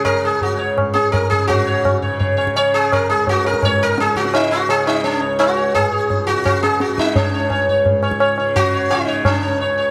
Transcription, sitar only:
\new Staff \with { instrumentName = "Sitar" } { \time 4/4 \tempo 4 = 170 << { r4. des''8 r2 | r8 des''8 r8 des''8 des''8 des''8 des''8 aes'8 | bes'8 aes'8 ges'8 bes'8 des''8 bes'8 aes'8 ges'8 | ees'8 ges'8 aes'8 ees'8 des'8 des''8 r8 des''8 |
r8 des''8 r2. | r8 des''8 des''8 des''8 r8 des''8 des''8 des''8 | r8 des''8 r8 des''8 r8 des''8 des''8 des''8 | } \\ { bes'8 aes'8 ges'8 r4 aes'8 bes'8 aes'8 | ges'4. r2 r8 | r1 | r2. ges'4 |
aes'4. ges'8 ges'8 aes'8 ges'8 ees'8 | des'4. r2 r8 | ges'4 ees'4 des'4 r4 | } >> }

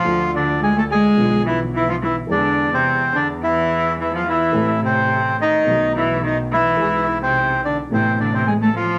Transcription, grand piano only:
\new Staff \with { instrumentName = "Grand piano" } { \clef bass \time 4/4 \key a \minor \tempo 4 = 107 <d, d f a f'>2 <b,, b, d f b f'>2 | <e, e gis gis'>1 | <a,, a, e a c' a'>2 <b,, b, dis a b fis'>2 | <e gis gis'>2 <a,, a, c a b e'>2 | }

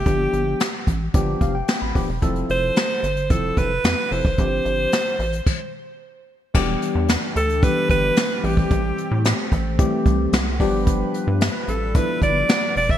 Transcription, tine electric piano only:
\new Staff \with { instrumentName = "Tine electric piano" } { \time 4/4 \key g \mixolydian \tempo 4 = 111 << { r2 r8 f''16 g''16 g''16 b''8. | r1 | r1 | r1 |
r1 | r1 | } \\ { <f b d' g'>4 r4 <f b d' g'>8. r8. <f b d' g'>16 r16 | <f c' e' a'>4 r4 <f c' e' a'>8. r8. <f c' e' a'>16 r16 | <f c' d' g'>4 r2. | <e g b d' g'>4 r4 <e g b d' g'>4 r8 <e g a c' g'>8~ |
<e g a c' g'>4 r4 <e g a c' g'>4 r8 <f g b d' g'>8~ | <f g b d' g'>4 r4 <f g b d' e'>4 r4 | } >> }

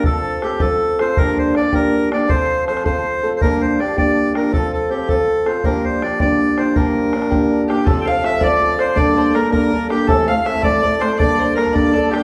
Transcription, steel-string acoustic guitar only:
\new Staff \with { instrumentName = "Steel-string acoustic guitar" } { \time 6/8 \key g \dorian \tempo 4. = 108 <f c' f' a'>4 <f c' f' a'>8 <f c' f' a'>4 <c' f' a'>8 | <g, d f bes d' g'>4 <f bes d' g'>8 <g, d f bes d' g'>4 <f bes d' g'>8 | <f c' f' a'>4 <f c' f' a'>8 <f c' f' a'>4 <c' f' a'>8 | <g, d f bes d' g'>4 <f bes d' g'>8 <g, d f bes d' g'>4 <f bes d' g'>8 |
<f c' f' a'>4 <f c' f' a'>8 <f c' f' a'>4 <c' f' a'>8 | <g, d f bes d' g'>4 <f bes d' g'>8 <g, d f bes d' g'>4 <f bes d' g'>8 | <g, d f bes d' g'>4 <f bes d' g'>8 <g, d f bes d' g'>4 <f bes d' g'>8 | <f c' f' a'>8 <c' f' a'>8 <f c' f' a'>8 <f c' f' a'>8 <f c' f' a'>8 <c' f' a'>8 |
<g, d g bes d' a'>8 <g bes d' a'>8 <g bes d' a'>8 <g, d g bes d' a'>8 <g bes d' a'>8 <g bes d' a'>8 | <a, e a c' e' a'>8 <a c' e' a'>8 <a c' e' a'>8 <a, e a c' e' a'>8 <a c' e' a'>8 <a c' e' a'>8 | <g, d g bes d' a'>8 <g bes d' a'>8 <g bes d' a'>8 <g, d g bes d' a'>8 <g bes d' a'>8 <g bes d' a'>8 | }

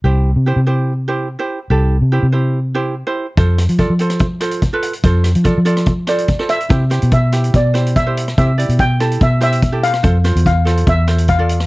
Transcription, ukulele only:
\new Staff \with { instrumentName = "Ukulele" } { \time 4/4 \key c \major \tempo 4 = 144 <e' g' c''>8 r8 <e' g' c''>16 r16 <e' g' c''>8 r8 <e' g' c''>8 r16 <e' g' c''>8 r16 | <e' g' a'>8 r8 <e' g' c''>16 r16 <e' g' c''>8 r8 <e' g' c''>8 r16 <e' g' c''>8 r16 | <f' a' c''>8 r8 <f' a' d''>16 r16 <f' a' c''>8 r8 <f' a' c''>8 r16 <f' a' b'>8 r16 | <f' a' c''>8 r8 <f' a' d''>16 r16 <f' a' d''>8 r8 <f' a' c''>8 r16 <f' a' c''>8 r16 |
<e' g' c''>16 r16 <e' g' c''>8 r8 <e' g' c''>8 r8 <e' g' c''>8 r16 <e' g' c''>8 r16 | <e' g' c''>16 r16 <e' g' d''>8 r8 <e' g' a'>8 r8 <e' g' c''>8 r16 <e' g' a'>8 r16 | <f' a' c''>16 r16 <f' a' c''>8 r8 <f' a' c''>8 r8 <f' a' c''>8 r16 <f' a' d''>8 r16 | }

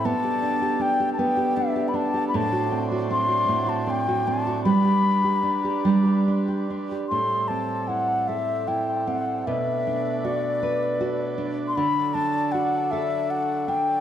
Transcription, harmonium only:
<<
  \new Staff \with { instrumentName = "Harmonium" } { \time 3/4 \key a \dorian \tempo 4 = 78 d'2.~ | d'2.~ | d'2. | c'2. |
d'2.~ | d'2. | }
  \new Staff \with { instrumentName = "Harmonium" } { \clef bass \time 3/4 \key a \dorian <b, g a'>2. | <a, fis c''>2. | <g b'>2. | <g a'>2. |
<a b'>2. | <fis a'>2. | }
>>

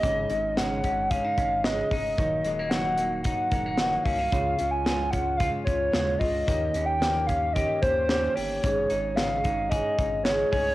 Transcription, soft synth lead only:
\new Staff \with { instrumentName = "Soft synth lead" } { \time 4/4 \key ees \dorian \tempo 4 = 112 ees''4 ges''4 f''4 ees''8 ees''8~ | ees''4 ges''4 ges''4. f''8~ | f''8. aes''8. ges''8 f''8 des''4 ees''8~ | ees''8. g''8. f''8 ees''8 c''4 des''8~ |
des''4 f''4 ees''4 des''8 des''8 | }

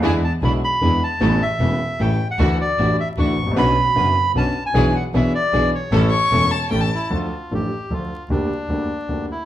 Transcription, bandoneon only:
\new Staff \with { instrumentName = "Bandoneon" } { \time 3/4 \key a \mixolydian \tempo 4 = 152 gis''8 a''8 b''8 b''4 a''8~ | a''8 e''4. g''8. fis''16~ | fis''8 d''4 e''8 cis'''4 | b''2 a''8. gis''16~ |
gis''8 fis''8 e''8 d''4 cis''8~ | cis''2 r8 e'8 | \key d \minor f'4 g'4 f'4 | d'2~ d'8 e'8 | }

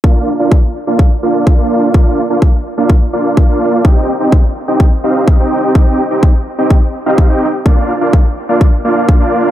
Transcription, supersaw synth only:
\new Staff \with { instrumentName = "Supersaw synth" } { \time 4/4 \key bes \major \tempo 4 = 126 <bes d' f' d'' f''>8 r16 <bes d' f' d'' f''>16 r8. <bes d' f' d'' f''>16 r8 <bes d' f' d'' f''>8. <bes d' f' d'' f''>8. | <bes d' f' d'' f''>8 r16 <bes d' f' d'' f''>16 r8. <bes d' f' d'' f''>16 r8 <bes d' f' d'' f''>8. <bes d' f' d'' f''>8. | <c' ees' g' ees'' g''>8 r16 <c' ees' g' ees'' g''>16 r8. <c' ees' g' ees'' g''>16 r8 <c' ees' g' ees'' f''>8. <c' ees' g' ees'' g''>8. | <c' ees' ees''>8 r16 <c' ees' g' ees'' g''>16 r8. <c' ees' g' ees'' g''>16 r8. <c' ees' g' ees'' f''>8 <c' ees' g' ees'' g''>16 r8 |
<bes d' f' d'' f''>8 r16 <bes d' f' d'' f''>16 r8. <bes d' f' d'' f''>16 r8 <bes d' f' d'' f''>8. <bes d' f' d'' f''>8. | }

